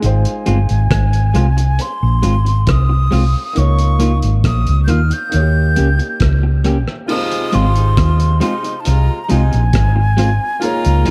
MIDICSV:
0, 0, Header, 1, 8, 480
1, 0, Start_track
1, 0, Key_signature, -4, "major"
1, 0, Tempo, 882353
1, 13, Time_signature, 4, 2, 24, 8
1, 6042, End_track
2, 0, Start_track
2, 0, Title_t, "Flute"
2, 0, Program_c, 0, 73
2, 21, Note_on_c, 0, 80, 89
2, 986, Note_on_c, 0, 84, 93
2, 994, Note_off_c, 0, 80, 0
2, 1469, Note_on_c, 0, 87, 90
2, 1477, Note_off_c, 0, 84, 0
2, 1947, Note_on_c, 0, 85, 95
2, 1955, Note_off_c, 0, 87, 0
2, 2276, Note_off_c, 0, 85, 0
2, 2425, Note_on_c, 0, 87, 90
2, 2617, Note_off_c, 0, 87, 0
2, 2634, Note_on_c, 0, 91, 69
2, 2665, Note_on_c, 0, 89, 98
2, 2673, Note_off_c, 0, 91, 0
2, 2790, Note_on_c, 0, 91, 102
2, 2798, Note_off_c, 0, 89, 0
2, 3505, Note_off_c, 0, 91, 0
2, 3863, Note_on_c, 0, 87, 116
2, 4106, Note_on_c, 0, 84, 107
2, 4114, Note_off_c, 0, 87, 0
2, 4580, Note_off_c, 0, 84, 0
2, 4583, Note_on_c, 0, 84, 97
2, 4788, Note_on_c, 0, 81, 76
2, 4796, Note_off_c, 0, 84, 0
2, 4824, Note_on_c, 0, 82, 101
2, 4832, Note_off_c, 0, 81, 0
2, 5027, Note_off_c, 0, 82, 0
2, 5027, Note_on_c, 0, 82, 74
2, 5063, Note_on_c, 0, 80, 102
2, 5071, Note_off_c, 0, 82, 0
2, 5781, Note_on_c, 0, 82, 109
2, 5789, Note_off_c, 0, 80, 0
2, 6042, Note_off_c, 0, 82, 0
2, 6042, End_track
3, 0, Start_track
3, 0, Title_t, "Grand piano"
3, 0, Program_c, 1, 0
3, 0, Control_c, 1, 64, 127
3, 0, Note_on_c, 1, 56, 62
3, 10, Note_on_c, 1, 63, 60
3, 19, Control_c, 1, 64, 0
3, 21, Note_on_c, 1, 65, 58
3, 31, Note_on_c, 1, 72, 70
3, 118, Control_c, 1, 64, 127
3, 1907, Note_off_c, 1, 56, 0
3, 1912, Note_off_c, 1, 63, 0
3, 1918, Note_off_c, 1, 65, 0
3, 1922, Note_on_c, 1, 58, 63
3, 1923, Note_off_c, 1, 72, 0
3, 1932, Note_on_c, 1, 63, 60
3, 1943, Control_c, 1, 64, 0
3, 1943, Note_on_c, 1, 65, 61
3, 1953, Note_on_c, 1, 73, 70
3, 2049, Control_c, 1, 64, 127
3, 2870, Note_off_c, 1, 58, 0
3, 2875, Note_off_c, 1, 63, 0
3, 2881, Note_off_c, 1, 65, 0
3, 2881, Note_on_c, 1, 58, 59
3, 2886, Note_off_c, 1, 73, 0
3, 2891, Note_on_c, 1, 63, 54
3, 2903, Note_on_c, 1, 66, 43
3, 2904, Control_c, 1, 64, 0
3, 2913, Note_on_c, 1, 73, 66
3, 2936, Note_off_c, 1, 66, 0
3, 2938, Note_on_c, 1, 67, 56
3, 2998, Control_c, 1, 64, 127
3, 3830, Note_off_c, 1, 58, 0
3, 3835, Note_off_c, 1, 63, 0
3, 3842, Note_on_c, 1, 58, 54
3, 3846, Note_off_c, 1, 73, 0
3, 3851, Note_on_c, 1, 63, 62
3, 3859, Note_off_c, 1, 67, 0
3, 3859, Note_on_c, 1, 65, 60
3, 3865, Control_c, 1, 64, 0
3, 3867, Note_on_c, 1, 68, 61
3, 3875, Note_on_c, 1, 75, 72
3, 3878, Note_on_c, 1, 60, 70
3, 3886, Note_off_c, 1, 58, 0
3, 3972, Control_c, 1, 64, 127
3, 5752, Note_off_c, 1, 63, 0
3, 5756, Note_off_c, 1, 65, 0
3, 5760, Note_off_c, 1, 68, 0
3, 5764, Note_off_c, 1, 75, 0
3, 5764, Note_on_c, 1, 58, 70
3, 5766, Note_off_c, 1, 60, 0
3, 5772, Note_on_c, 1, 63, 63
3, 5779, Note_on_c, 1, 65, 64
3, 5784, Control_c, 1, 64, 0
3, 5787, Note_on_c, 1, 68, 65
3, 5795, Note_on_c, 1, 73, 77
3, 5880, Control_c, 1, 64, 127
3, 6042, Note_off_c, 1, 58, 0
3, 6042, Note_off_c, 1, 63, 0
3, 6042, Note_off_c, 1, 65, 0
3, 6042, Note_off_c, 1, 68, 0
3, 6042, Note_off_c, 1, 73, 0
3, 6042, End_track
4, 0, Start_track
4, 0, Title_t, "Clean electric guitar"
4, 0, Program_c, 2, 27
4, 250, Note_on_c, 2, 56, 82
4, 252, Note_on_c, 2, 60, 86
4, 254, Note_on_c, 2, 65, 90
4, 310, Note_off_c, 2, 56, 0
4, 311, Note_off_c, 2, 60, 0
4, 312, Note_off_c, 2, 65, 0
4, 729, Note_on_c, 2, 56, 80
4, 733, Note_on_c, 2, 60, 88
4, 734, Note_on_c, 2, 65, 96
4, 790, Note_off_c, 2, 56, 0
4, 792, Note_off_c, 2, 60, 0
4, 793, Note_off_c, 2, 65, 0
4, 1210, Note_on_c, 2, 56, 80
4, 1213, Note_on_c, 2, 60, 81
4, 1215, Note_on_c, 2, 65, 87
4, 1271, Note_off_c, 2, 56, 0
4, 1272, Note_off_c, 2, 60, 0
4, 1274, Note_off_c, 2, 65, 0
4, 1691, Note_on_c, 2, 56, 85
4, 1695, Note_on_c, 2, 60, 81
4, 1697, Note_on_c, 2, 65, 89
4, 1752, Note_off_c, 2, 56, 0
4, 1754, Note_off_c, 2, 60, 0
4, 1755, Note_off_c, 2, 65, 0
4, 2172, Note_on_c, 2, 58, 78
4, 2176, Note_on_c, 2, 63, 75
4, 2179, Note_on_c, 2, 65, 79
4, 2233, Note_off_c, 2, 58, 0
4, 2234, Note_off_c, 2, 63, 0
4, 2236, Note_off_c, 2, 65, 0
4, 2652, Note_on_c, 2, 58, 80
4, 2656, Note_on_c, 2, 63, 83
4, 2659, Note_on_c, 2, 65, 81
4, 2713, Note_off_c, 2, 58, 0
4, 2715, Note_off_c, 2, 63, 0
4, 2716, Note_off_c, 2, 65, 0
4, 3135, Note_on_c, 2, 58, 81
4, 3138, Note_on_c, 2, 61, 74
4, 3140, Note_on_c, 2, 67, 82
4, 3194, Note_off_c, 2, 58, 0
4, 3196, Note_off_c, 2, 61, 0
4, 3197, Note_off_c, 2, 67, 0
4, 3614, Note_on_c, 2, 58, 81
4, 3618, Note_on_c, 2, 61, 74
4, 3620, Note_on_c, 2, 67, 86
4, 3674, Note_off_c, 2, 58, 0
4, 3676, Note_off_c, 2, 61, 0
4, 3677, Note_off_c, 2, 67, 0
4, 4093, Note_on_c, 2, 56, 79
4, 4096, Note_on_c, 2, 60, 87
4, 4098, Note_on_c, 2, 65, 92
4, 4154, Note_off_c, 2, 56, 0
4, 4155, Note_off_c, 2, 60, 0
4, 4156, Note_off_c, 2, 65, 0
4, 4572, Note_on_c, 2, 56, 86
4, 4576, Note_on_c, 2, 60, 98
4, 4579, Note_on_c, 2, 65, 106
4, 4633, Note_off_c, 2, 56, 0
4, 4635, Note_off_c, 2, 60, 0
4, 4637, Note_off_c, 2, 65, 0
4, 5054, Note_on_c, 2, 56, 84
4, 5058, Note_on_c, 2, 60, 85
4, 5061, Note_on_c, 2, 65, 90
4, 5114, Note_off_c, 2, 56, 0
4, 5116, Note_off_c, 2, 60, 0
4, 5117, Note_off_c, 2, 65, 0
4, 5532, Note_on_c, 2, 56, 84
4, 5535, Note_on_c, 2, 60, 87
4, 5538, Note_on_c, 2, 65, 90
4, 5593, Note_off_c, 2, 56, 0
4, 5595, Note_off_c, 2, 60, 0
4, 5596, Note_off_c, 2, 65, 0
4, 6013, Note_on_c, 2, 58, 88
4, 6016, Note_on_c, 2, 63, 91
4, 6018, Note_on_c, 2, 65, 101
4, 6042, Note_off_c, 2, 58, 0
4, 6042, Note_off_c, 2, 63, 0
4, 6042, Note_off_c, 2, 65, 0
4, 6042, End_track
5, 0, Start_track
5, 0, Title_t, "Saxophone section"
5, 0, Program_c, 3, 65
5, 3853, Note_on_c, 3, 65, 116
5, 3854, Note_on_c, 3, 48, 107
5, 3854, Note_on_c, 3, 56, 105
5, 4196, Note_off_c, 3, 48, 0
5, 4196, Note_off_c, 3, 56, 0
5, 4196, Note_off_c, 3, 65, 0
5, 4217, Note_on_c, 3, 63, 82
5, 4219, Note_on_c, 3, 48, 73
5, 4220, Note_on_c, 3, 56, 73
5, 4312, Note_off_c, 3, 63, 0
5, 4314, Note_off_c, 3, 48, 0
5, 4314, Note_off_c, 3, 56, 0
5, 4335, Note_on_c, 3, 65, 80
5, 4336, Note_on_c, 3, 48, 78
5, 4337, Note_on_c, 3, 56, 73
5, 4528, Note_off_c, 3, 65, 0
5, 4529, Note_off_c, 3, 48, 0
5, 4529, Note_off_c, 3, 56, 0
5, 4571, Note_on_c, 3, 56, 87
5, 4572, Note_on_c, 3, 48, 91
5, 4572, Note_on_c, 3, 63, 97
5, 4766, Note_off_c, 3, 48, 0
5, 4766, Note_off_c, 3, 56, 0
5, 4766, Note_off_c, 3, 63, 0
5, 4814, Note_on_c, 3, 56, 74
5, 4815, Note_on_c, 3, 48, 78
5, 4815, Note_on_c, 3, 65, 88
5, 5007, Note_off_c, 3, 56, 0
5, 5008, Note_off_c, 3, 48, 0
5, 5008, Note_off_c, 3, 65, 0
5, 5054, Note_on_c, 3, 48, 78
5, 5054, Note_on_c, 3, 63, 90
5, 5055, Note_on_c, 3, 56, 78
5, 5247, Note_off_c, 3, 48, 0
5, 5247, Note_off_c, 3, 63, 0
5, 5248, Note_off_c, 3, 56, 0
5, 5773, Note_on_c, 3, 56, 103
5, 5774, Note_on_c, 3, 46, 108
5, 5774, Note_on_c, 3, 65, 117
5, 6042, Note_off_c, 3, 46, 0
5, 6042, Note_off_c, 3, 56, 0
5, 6042, Note_off_c, 3, 65, 0
5, 6042, End_track
6, 0, Start_track
6, 0, Title_t, "Fingered electric bass"
6, 0, Program_c, 4, 33
6, 21, Note_on_c, 4, 32, 100
6, 135, Note_off_c, 4, 32, 0
6, 260, Note_on_c, 4, 31, 86
6, 374, Note_off_c, 4, 31, 0
6, 383, Note_on_c, 4, 32, 85
6, 492, Note_off_c, 4, 32, 0
6, 496, Note_on_c, 4, 32, 103
6, 725, Note_off_c, 4, 32, 0
6, 738, Note_on_c, 4, 36, 87
6, 966, Note_off_c, 4, 36, 0
6, 1103, Note_on_c, 4, 34, 85
6, 1213, Note_off_c, 4, 34, 0
6, 1221, Note_on_c, 4, 32, 83
6, 1448, Note_off_c, 4, 32, 0
6, 1460, Note_on_c, 4, 36, 85
6, 1687, Note_off_c, 4, 36, 0
6, 1701, Note_on_c, 4, 36, 78
6, 1816, Note_off_c, 4, 36, 0
6, 1944, Note_on_c, 4, 37, 95
6, 2287, Note_off_c, 4, 37, 0
6, 2306, Note_on_c, 4, 32, 88
6, 2415, Note_off_c, 4, 32, 0
6, 2421, Note_on_c, 4, 34, 94
6, 2536, Note_off_c, 4, 34, 0
6, 2552, Note_on_c, 4, 37, 92
6, 2658, Note_off_c, 4, 37, 0
6, 2667, Note_on_c, 4, 39, 88
6, 2779, Note_off_c, 4, 39, 0
6, 2906, Note_on_c, 4, 39, 90
6, 3132, Note_off_c, 4, 39, 0
6, 3148, Note_on_c, 4, 37, 78
6, 3260, Note_off_c, 4, 37, 0
6, 3381, Note_on_c, 4, 37, 84
6, 3726, Note_off_c, 4, 37, 0
6, 4108, Note_on_c, 4, 32, 92
6, 4332, Note_off_c, 4, 32, 0
6, 4342, Note_on_c, 4, 39, 98
6, 4569, Note_off_c, 4, 39, 0
6, 4827, Note_on_c, 4, 36, 102
6, 4939, Note_off_c, 4, 36, 0
6, 5067, Note_on_c, 4, 36, 85
6, 5179, Note_off_c, 4, 36, 0
6, 5190, Note_on_c, 4, 34, 92
6, 5298, Note_off_c, 4, 34, 0
6, 5301, Note_on_c, 4, 32, 92
6, 5646, Note_off_c, 4, 32, 0
6, 5908, Note_on_c, 4, 37, 87
6, 6016, Note_off_c, 4, 37, 0
6, 6042, End_track
7, 0, Start_track
7, 0, Title_t, "Muted clean electric guitar strokes"
7, 854, Note_on_c, 9, 29, 59
7, 909, Note_off_c, 9, 29, 0
7, 1333, Note_on_c, 9, 29, 46
7, 1387, Note_off_c, 9, 29, 0
7, 1574, Note_on_c, 9, 29, 47
7, 1628, Note_off_c, 9, 29, 0
7, 2776, Note_on_c, 9, 29, 47
7, 2830, Note_off_c, 9, 29, 0
7, 3259, Note_on_c, 9, 29, 42
7, 3313, Note_off_c, 9, 29, 0
7, 3500, Note_on_c, 9, 29, 39
7, 3554, Note_off_c, 9, 29, 0
7, 4696, Note_on_c, 9, 29, 48
7, 4751, Note_off_c, 9, 29, 0
7, 5178, Note_on_c, 9, 29, 56
7, 5232, Note_off_c, 9, 29, 0
7, 5417, Note_on_c, 9, 29, 46
7, 5471, Note_off_c, 9, 29, 0
7, 6042, End_track
8, 0, Start_track
8, 0, Title_t, "Drums"
8, 14, Note_on_c, 9, 42, 87
8, 68, Note_off_c, 9, 42, 0
8, 137, Note_on_c, 9, 42, 52
8, 191, Note_off_c, 9, 42, 0
8, 251, Note_on_c, 9, 42, 63
8, 306, Note_off_c, 9, 42, 0
8, 375, Note_on_c, 9, 42, 48
8, 430, Note_off_c, 9, 42, 0
8, 493, Note_on_c, 9, 36, 107
8, 494, Note_on_c, 9, 42, 100
8, 497, Note_on_c, 9, 37, 117
8, 547, Note_off_c, 9, 36, 0
8, 548, Note_off_c, 9, 42, 0
8, 552, Note_off_c, 9, 37, 0
8, 616, Note_on_c, 9, 42, 49
8, 670, Note_off_c, 9, 42, 0
8, 733, Note_on_c, 9, 42, 60
8, 787, Note_off_c, 9, 42, 0
8, 858, Note_on_c, 9, 42, 58
8, 913, Note_off_c, 9, 42, 0
8, 973, Note_on_c, 9, 42, 88
8, 1028, Note_off_c, 9, 42, 0
8, 1214, Note_on_c, 9, 42, 70
8, 1268, Note_off_c, 9, 42, 0
8, 1340, Note_on_c, 9, 42, 45
8, 1395, Note_off_c, 9, 42, 0
8, 1451, Note_on_c, 9, 42, 86
8, 1455, Note_on_c, 9, 36, 108
8, 1462, Note_on_c, 9, 37, 113
8, 1506, Note_off_c, 9, 42, 0
8, 1509, Note_off_c, 9, 36, 0
8, 1516, Note_off_c, 9, 37, 0
8, 1697, Note_on_c, 9, 46, 55
8, 1751, Note_off_c, 9, 46, 0
8, 1936, Note_on_c, 9, 42, 86
8, 1990, Note_off_c, 9, 42, 0
8, 2060, Note_on_c, 9, 42, 54
8, 2114, Note_off_c, 9, 42, 0
8, 2174, Note_on_c, 9, 42, 67
8, 2229, Note_off_c, 9, 42, 0
8, 2298, Note_on_c, 9, 42, 49
8, 2353, Note_off_c, 9, 42, 0
8, 2416, Note_on_c, 9, 36, 110
8, 2417, Note_on_c, 9, 42, 99
8, 2420, Note_on_c, 9, 37, 117
8, 2470, Note_off_c, 9, 36, 0
8, 2472, Note_off_c, 9, 42, 0
8, 2475, Note_off_c, 9, 37, 0
8, 2539, Note_on_c, 9, 42, 50
8, 2593, Note_off_c, 9, 42, 0
8, 2654, Note_on_c, 9, 42, 63
8, 2709, Note_off_c, 9, 42, 0
8, 2780, Note_on_c, 9, 42, 57
8, 2834, Note_off_c, 9, 42, 0
8, 2894, Note_on_c, 9, 42, 95
8, 2949, Note_off_c, 9, 42, 0
8, 3135, Note_on_c, 9, 42, 66
8, 3190, Note_off_c, 9, 42, 0
8, 3261, Note_on_c, 9, 42, 44
8, 3316, Note_off_c, 9, 42, 0
8, 3373, Note_on_c, 9, 42, 92
8, 3376, Note_on_c, 9, 36, 105
8, 3383, Note_on_c, 9, 37, 114
8, 3427, Note_off_c, 9, 42, 0
8, 3430, Note_off_c, 9, 36, 0
8, 3438, Note_off_c, 9, 37, 0
8, 3615, Note_on_c, 9, 42, 74
8, 3669, Note_off_c, 9, 42, 0
8, 3740, Note_on_c, 9, 37, 59
8, 3795, Note_off_c, 9, 37, 0
8, 3856, Note_on_c, 9, 49, 100
8, 3911, Note_off_c, 9, 49, 0
8, 3979, Note_on_c, 9, 42, 57
8, 4034, Note_off_c, 9, 42, 0
8, 4094, Note_on_c, 9, 42, 71
8, 4148, Note_off_c, 9, 42, 0
8, 4219, Note_on_c, 9, 42, 53
8, 4274, Note_off_c, 9, 42, 0
8, 4338, Note_on_c, 9, 36, 114
8, 4338, Note_on_c, 9, 42, 106
8, 4342, Note_on_c, 9, 37, 125
8, 4392, Note_off_c, 9, 36, 0
8, 4393, Note_off_c, 9, 42, 0
8, 4396, Note_off_c, 9, 37, 0
8, 4459, Note_on_c, 9, 42, 56
8, 4514, Note_off_c, 9, 42, 0
8, 4576, Note_on_c, 9, 42, 67
8, 4630, Note_off_c, 9, 42, 0
8, 4702, Note_on_c, 9, 42, 63
8, 4757, Note_off_c, 9, 42, 0
8, 4816, Note_on_c, 9, 42, 98
8, 4870, Note_off_c, 9, 42, 0
8, 5057, Note_on_c, 9, 42, 67
8, 5111, Note_off_c, 9, 42, 0
8, 5183, Note_on_c, 9, 42, 45
8, 5237, Note_off_c, 9, 42, 0
8, 5294, Note_on_c, 9, 42, 102
8, 5297, Note_on_c, 9, 36, 118
8, 5305, Note_on_c, 9, 37, 122
8, 5349, Note_off_c, 9, 42, 0
8, 5351, Note_off_c, 9, 36, 0
8, 5359, Note_off_c, 9, 37, 0
8, 5538, Note_on_c, 9, 42, 86
8, 5592, Note_off_c, 9, 42, 0
8, 5776, Note_on_c, 9, 42, 93
8, 5831, Note_off_c, 9, 42, 0
8, 5900, Note_on_c, 9, 42, 61
8, 5955, Note_off_c, 9, 42, 0
8, 6015, Note_on_c, 9, 42, 72
8, 6042, Note_off_c, 9, 42, 0
8, 6042, End_track
0, 0, End_of_file